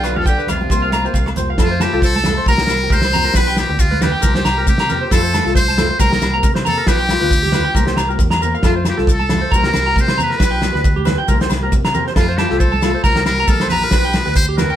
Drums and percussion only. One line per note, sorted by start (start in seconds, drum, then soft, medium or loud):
0.04 cross-stick medium
0.04 closed hi-hat soft
0.04 low agogo medium
0.04 maracas medium
0.16 high conga medium
0.16 low conga medium
0.26 kick medium
0.26 maracas medium
0.39 maracas soft
0.48 cross-stick medium
0.48 closed hi-hat medium
0.48 high conga medium
0.48 low conga medium
0.48 low agogo medium
0.48 maracas medium
0.61 high conga medium
0.70 kick medium
0.70 maracas loud
0.92 cross-stick medium
0.92 closed hi-hat soft
0.92 high conga medium
0.92 low agogo medium
0.92 maracas medium
1.06 maracas soft
1.14 kick medium
1.14 maracas loud
1.26 cross-stick medium
1.26 high conga medium
1.26 low agogo medium
1.36 closed hi-hat soft
1.36 low conga medium
1.36 maracas medium
1.58 kick medium
1.58 snare medium
1.58 low agogo medium
1.58 maracas loud
1.80 snare medium
1.80 high conga medium
1.80 low agogo medium
1.80 maracas medium
2.02 kick medium
2.02 maracas loud
2.16 high conga medium
2.24 snare medium
2.24 low conga medium
2.24 low agogo medium
2.24 maracas medium
2.46 kick medium
2.46 high conga medium
2.46 maracas loud
2.58 snare medium
2.67 snare medium
2.67 maracas medium
2.71 low agogo medium
2.90 kick medium
2.90 high conga medium
2.90 maracas loud
3.02 snare medium
3.02 low agogo medium
3.13 snare soft
3.13 low conga medium
3.13 maracas medium
3.25 snare soft
3.34 kick medium
3.34 snare medium
3.34 low agogo medium
3.34 maracas loud
3.57 snare medium
3.57 high conga medium
3.57 low agogo medium
3.57 maracas medium
3.79 kick loud
3.79 maracas loud
3.92 high conga medium
4.02 snare medium
4.02 low conga medium
4.02 low agogo medium
4.02 maracas medium
4.22 kick loud
4.22 high conga medium
4.22 maracas loud
4.35 snare medium
4.35 maracas soft
4.45 snare medium
4.45 low agogo medium
4.45 maracas medium
4.67 kick loud
4.67 high conga medium
4.67 maracas loud
4.78 snare medium
4.78 low agogo medium
4.89 snare soft
4.89 low conga medium
4.89 maracas medium
5.11 kick medium
5.11 snare medium
5.11 low agogo medium
5.11 maracas loud
5.34 snare medium
5.34 high conga medium
5.34 low agogo medium
5.34 maracas medium
5.46 snare soft
5.56 kick medium
5.56 maracas loud
5.68 high conga medium
5.78 snare medium
5.78 low conga medium
5.78 low agogo medium
5.78 maracas medium
6.00 kick loud
6.00 high conga medium
6.00 maracas loud
6.12 snare medium
6.21 snare medium
6.21 low agogo medium
6.21 maracas medium
6.43 kick loud
6.43 high conga medium
6.43 maracas loud
6.55 snare medium
6.55 low agogo medium
6.65 snare soft
6.65 low conga medium
6.65 maracas medium
6.87 kick medium
6.87 snare medium
6.87 low agogo medium
6.87 maracas loud
7.01 maracas soft
7.09 snare medium
7.09 high conga medium
7.09 low agogo medium
7.09 maracas medium
7.21 snare soft
7.31 kick medium
7.31 maracas loud
7.46 high conga medium
7.46 low conga medium
7.52 snare medium
7.52 low conga medium
7.52 low agogo medium
7.52 maracas medium
7.75 kick medium
7.75 high conga medium
7.75 maracas loud
7.87 snare medium
7.87 maracas soft
7.97 snare medium
7.97 low agogo medium
7.97 maracas medium
8.10 maracas soft
8.19 kick loud
8.19 high conga medium
8.19 maracas loud
8.30 snare medium
8.30 low agogo medium
8.30 maracas soft
8.42 low conga medium
8.42 maracas medium
8.55 maracas soft
8.63 kick medium
8.63 snare medium
8.63 low agogo medium
8.63 maracas medium
8.85 snare medium
8.85 high conga medium
8.85 low agogo medium
8.85 maracas medium
8.98 snare soft
9.07 kick loud
9.07 maracas medium
9.21 high conga medium
9.29 snare medium
9.29 low conga medium
9.29 low agogo medium
9.29 maracas medium
9.52 kick loud
9.52 high conga medium
9.52 maracas loud
9.64 snare medium
9.64 maracas soft
9.73 snare medium
9.73 low agogo medium
9.73 maracas medium
9.96 kick medium
9.96 high conga medium
9.96 maracas loud
10.08 snare medium
10.08 low agogo medium
10.19 snare soft
10.19 low conga medium
10.19 maracas medium
10.31 snare soft
10.40 kick loud
10.40 snare medium
10.40 low agogo medium
10.40 maracas medium
10.62 snare medium
10.62 high conga medium
10.62 low agogo medium
10.62 maracas medium
10.76 snare soft
10.84 kick loud
10.84 maracas loud
10.97 high conga medium
11.05 snare medium
11.05 low conga medium
11.05 low agogo medium
11.05 maracas medium
11.28 kick medium
11.28 high conga medium
11.28 maracas medium
11.41 snare medium
11.41 maracas soft
11.50 snare medium
11.50 low agogo medium
11.50 maracas medium
11.72 kick medium
11.72 high conga medium
11.72 maracas medium
11.85 snare medium
11.85 low agogo medium
11.94 low conga medium
11.94 maracas medium
12.07 snare soft
12.16 kick loud
12.16 snare medium
12.16 low agogo medium
12.16 maracas medium
12.38 snare medium
12.38 high conga medium
12.38 low agogo medium
12.50 snare soft
12.60 kick loud
12.60 maracas medium
12.73 high conga medium
12.82 snare medium
12.82 low agogo medium
12.82 maracas medium
13.04 kick loud
13.04 high conga medium
13.04 maracas medium
13.16 snare medium
13.16 maracas soft
13.26 snare medium
13.26 low agogo medium
13.26 maracas medium
13.48 kick loud
13.48 high conga medium
13.48 maracas medium
13.60 snare medium
13.60 low agogo medium
13.69 snare soft
13.69 low conga medium
13.69 maracas medium
13.81 snare soft
13.91 kick medium
13.91 snare medium
13.91 low agogo medium
13.91 maracas loud
14.04 maracas soft
14.13 snare medium
14.13 high conga medium
14.13 low agogo medium
14.13 maracas medium
14.25 snare soft
14.25 maracas soft
14.35 kick loud
14.35 maracas loud
14.58 snare medium
14.58 low conga medium
14.58 low agogo medium
14.58 maracas medium
14.70 maracas soft